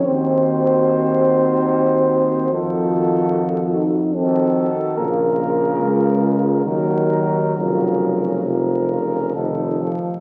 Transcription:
0.04 tuba D#2, trombone D#3, euphonium C4, french horn section F#4, flugelhorn C5
2.52 tuba F2, trombone D#3, euphonium F4, french horn section F#4, flugelhorn A4
3.76 euphonium D#4
4.15 trombone D#3, euphonium C4, french horn section F#4, flugelhorn A4
4.97 tuba A#1, trombone C#3, euphonium A#3, french horn section F4, flugelhorn A#4
5.80 tuba C#2, euphonium G#3
6.64 tuba D#2, trombone D#3, euphonium F#3, french horn section F#4, flugelhorn A#4
7.55 tuba F1, trombone C#3, euphonium F#3, french horn section F4, flugelhorn A#4
8.45 trombone C3, euphonium F3, french horn section F4, flugelhorn A#4
8.91 trombone C#3
9.35 tuba F1, trombone D#3, french horn section F4, flugelhorn A4
9.82 trombone F3

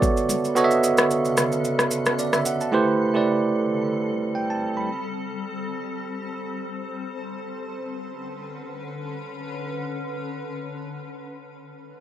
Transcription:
Already playing: ambient pad C#3 D3 A4, tine electric piano B3 F#4 A4 C#5 D5 E5
0.02 kick, high conga, shaker
0.17 shaker
0.29 high conga, shaker
0.45 shaker
0.55 tine electric piano B3 F#4 A4 C#5 D#5, shaker
0.64 tine electric piano E5
0.71 shaker
0.84 shaker
0.97 cross-stick, shaker
1.11 shaker
1.25 shaker
1.37 cross-stick, shaker
1.52 shaker
1.65 shaker
1.79 cross-stick, shaker
1.91 shaker
2.06 cross-stick, shaker
2.19 tine electric piano D5, shaker
2.33 tine electric piano E5, cross-stick, shaker
2.46 tine electric piano F#5, shaker
2.61 tine electric piano A5, shaker
2.72 ambient pad G3 C4, tine electric piano A3 E4 G4 B4 C5
3.14 tine electric piano A3 E4 G4 B4 D5
4.35 tine electric piano G5
4.50 tine electric piano A5
4.77 tine electric piano B5
4.88 ambient pad C5
7.05 ambient pad D3 C#4 A4 B4

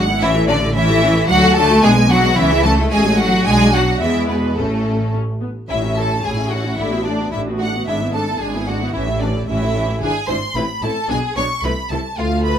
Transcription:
Already playing: double bass section G#1, violin section F#5
0.08 viola section B3 E4
0.21 double bass section A1, viola section E3 C#4, cello section E3, violin section E4 E5
0.34 viola section A3 E4
0.47 cello section D3, viola section E3 C#4, violin section D4 D5
0.61 viola section A3 E4
0.74 viola section E3 C#4, cello section E3, violin section E4 E5
0.88 viola section A3 E4
1.02 viola section E3 C#4
1.15 viola section A3 E4
1.28 double bass section D2, cello section F#3, viola section F#3 D4, violin section F#4 F#5
1.42 viola section A3 F#4
1.55 viola section F#3 D4, cello section A3, violin section A4 A5
1.69 viola section A3 F#4
1.82 double bass section B1, cello section G#3, viola section B3 D4, violin section G#4 G#5
1.95 viola section G#3 B3
2.08 cello section F#3, viola section B3 D4, violin section F#4 F#5
2.22 viola section G#3 B3
2.36 double bass section C#2, viola section E3 C#4, cello section E3, violin section E4 E5
2.50 viola section G#3 E4
2.63 viola section E3 C#4, cello section A3, violin section A4 A5
2.77 viola section G#3 E4
2.90 double bass section A1, cello section G#3, viola section A3 C#4, violin section G#4 G#5
3.04 viola section F#3 A3
3.18 cello section F#3, viola section A3 C#4, violin section F#4 F#5
3.32 viola section F#3 A3
3.45 double bass section B1, viola section F#3 D4, cello section G#3, violin section G#4 G#5
3.73 cello section F#3, violin section F#4 F#5
4.00 double bass section E2, cello section E3, viola section G#3 B3, violin section E4 E5
4.28 cello section B2, violin section B3 B4
4.56 double bass section A1, cello section A2, violin section A3 A4, viola section A3 C#4
5.13 viola section C#4
5.40 viola section B3
5.69 double bass section A1, cello section A2, viola section C#4 E4, violin section E4 E5
5.83 viola section C#4 E4
5.96 viola section C#4 E4, violin section A4 A5
6.10 viola section C#4 E4
6.23 double bass section A1, cello section A2, viola section C#4 E4, violin section G#4 G#5
6.37 viola section C#4 E4
6.51 viola section C#4 E4, violin section F#4 F#5
6.65 viola section C#4 E4
6.78 double bass section A1, cello section A2, viola section A3 D4, violin section E4 E5
6.91 viola section B3 F#4
7.05 viola section A3 D4, violin section D4 D5
7.19 viola section B3 F#4
7.32 double bass section A1, cello section A2, viola section A3 D4, violin section E4 E5
7.47 viola section B3 F#4
7.59 viola section A3 D4, violin section F#4 F#5
7.75 viola section B3 F#4
7.87 double bass section G#1, cello section G#2, viola section G#3 D4, violin section E4 E5
8.01 viola section B3 E4
8.13 viola section G#3 D4, violin section A4 A5
8.27 viola section B3 E4
8.41 double bass section G#1, cello section G#2, viola section G#3 D4, violin section G#4 G#5
8.54 viola section B3 E4
8.68 viola section G#3 D4, violin section F#4 F#5
8.81 viola section B3 E4
8.93 double bass section A1, cello section A2, viola section E3 C#4, violin section E4 E5
9.08 viola section A3 E4
9.20 viola section E3 C#4, violin section D4 D5
9.35 viola section A3 E4
9.48 double bass section A1, cello section A2, viola section E3 C#4, violin section E4 E5
9.62 viola section A3 E4
9.75 viola section E3 C#4
9.88 viola section A3 E4
10.02 double bass section G#1, cello section G#2, viola section D4 E4, violin section G#4 G#5
10.28 double bass section G#1, cello section G#2, viola section D4 E4, violin section C5 C6
10.55 double bass section A1, cello section A2, viola section C4 E4, violin section B4 B5
10.82 double bass section A1, cello section A2, viola section C4 E4, violin section A4 A5
11.09 double bass section B1, cello section B2, viola section B3 D4, violin section G#4 G#5
11.36 double bass section B1, cello section B2, viola section B3 D4, violin section C#5 C#6
11.63 double bass section C2, cello section C3, viola section A3 E4, violin section B4 B5
11.90 double bass section C2, cello section C3, viola section A3 E4, violin section A4 A5
12.16 double bass section D2, cello section D2, viola section A3 F4, violin section F4 F5
12.46 violin section B4 B5

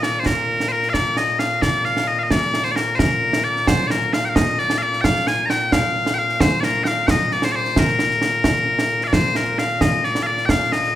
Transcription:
Already playing: bagpipes A#2
0.03 bagpipes D5, snare
0.20 bagpipes C5
0.26 bagpipes A#4, concert bass drum, snare
0.60 snare
0.68 bagpipes A#4 C5
0.83 snare
0.89 bagpipes F5
0.93 bagpipes D5, concert bass drum, snare
1.17 bagpipes D#5, snare
1.39 bagpipes F5, snare
1.62 bagpipes D5, concert bass drum, snare
1.85 bagpipes F5, snare
1.97 snare
2.08 bagpipes D#5
2.19 bagpipes F5
2.23 bagpipes D#5
2.31 bagpipes D5, concert bass drum, snare
2.42 snare
2.54 snare
2.64 bagpipes C5, snare
2.71 bagpipes D5
2.76 bagpipes A#4, snare
2.95 bagpipes A#4 C5, concert bass drum, snare
3.33 snare
3.44 bagpipes D5
3.56 snare
3.67 bagpipes C5, concert bass drum, snare
3.87 bagpipes A#4 D5, snare
4.13 bagpipes F5, snare
4.25 bagpipes G5
4.29 bagpipes F5
4.36 bagpipes D#5, concert bass drum, snare
4.59 bagpipes D5, snare
4.70 snare
4.78 bagpipes F5
4.83 bagpipes D5
4.93 snare
5.01 bagpipes F5 G5, concert bass drum, snare
5.16 snare
5.27 bagpipes G#5, snare
5.46 bagpipes G5 A#5
5.50 snare
5.72 bagpipes F5, concert bass drum, snare
6.06 snare
6.14 bagpipes G5
6.19 bagpipes F5
6.29 snare
6.40 bagpipes C5, concert bass drum, snare
6.60 bagpipes A#4 D5, snare
6.84 bagpipes F5 G5, snare
7.07 bagpipes D#5 G5, concert bass drum, snare
7.31 bagpipes D5, snare
7.42 bagpipes C5, snare
7.52 bagpipes C5 D5
7.65 snare
7.76 bagpipes A#4, concert bass drum, snare
7.88 snare
7.99 snare
8.10 snare
8.21 snare
8.44 concert bass drum, snare
8.79 snare
9.01 bagpipes F5, snare
9.08 bagpipes D5
9.13 bagpipes C5, concert bass drum, snare
9.35 bagpipes A#4, snare
9.58 bagpipes F5, snare
9.81 bagpipes D#5, concert bass drum, snare
10.04 bagpipes D5, snare
10.15 snare
10.23 bagpipes D5 F5
10.38 snare
10.46 bagpipes G5, concert bass drum, snare
10.50 bagpipes F5
10.61 snare
10.72 bagpipes D#5, snare
10.83 snare

